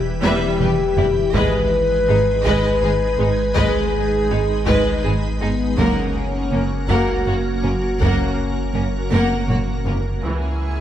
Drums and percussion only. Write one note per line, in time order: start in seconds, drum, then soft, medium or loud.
0.23 taiko high medium
0.60 taiko mid medium
0.97 taiko low medium
1.34 taiko medium
2.45 taiko medium
3.56 taiko medium
4.67 taiko medium
5.78 taiko medium
6.89 taiko medium
8.01 taiko medium
9.12 taiko high medium
9.49 taiko low-mid medium
9.86 taiko low medium
10.23 taiko soft